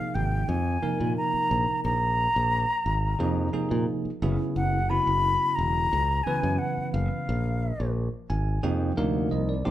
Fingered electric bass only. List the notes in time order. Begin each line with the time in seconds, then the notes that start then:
0.15 G#1
0.49 F2
0.83 muted fingered electric bass stroke
1.00 A#2
1.34 muted fingered electric bass stroke
1.51 A#1
1.85 A#1
2.36 A#1
2.86 G#1
3.20 F2
3.54 muted fingered electric bass stroke
3.71 A#2
4.05 muted fingered electric bass stroke
4.22 F#1
4.56 F#1
5.07 F#1
5.59 E1
5.93 C#2
6.26 muted fingered electric bass stroke
6.43 F#2
6.78 muted fingered electric bass stroke
6.94 F#1
7.29 A#1
7.80 A#1
8.30 G#1
8.64 F2
8.98 D2
9.32 C2
9.67 A#1